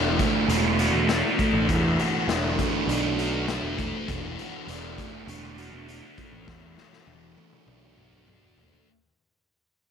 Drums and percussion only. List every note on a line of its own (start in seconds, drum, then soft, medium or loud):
0.19 kick medium
0.19 closed hi-hat medium
0.49 closed hi-hat medium
0.79 closed hi-hat medium
1.09 snare loud
1.09 closed hi-hat medium
1.39 kick medium
1.39 closed hi-hat medium
1.69 kick loud
1.69 closed hi-hat medium
1.99 closed hi-hat soft
2.29 snare loud
2.29 closed hi-hat medium
2.59 kick medium
2.59 closed hi-hat medium
2.89 closed hi-hat medium
3.19 closed hi-hat soft
3.48 snare medium
3.48 closed hi-hat medium
3.79 kick medium
3.79 closed hi-hat medium
4.08 kick medium
4.08 closed hi-hat medium
4.39 closed hi-hat medium
4.68 closed hi-hat medium
4.98 kick medium
4.98 closed hi-hat medium
5.28 closed hi-hat medium
5.58 closed hi-hat soft
5.89 closed hi-hat medium
6.18 kick medium
6.18 closed hi-hat medium
6.47 kick loud
6.47 snare medium
6.78 snare soft
6.93 snare soft
7.07 high tom medium
7.38 high tom medium
7.53 mid tom medium
7.68 mid tom medium
7.97 mid tom medium
8.13 mid tom medium
8.28 mid tom medium
8.57 floor tom medium
8.73 floor tom medium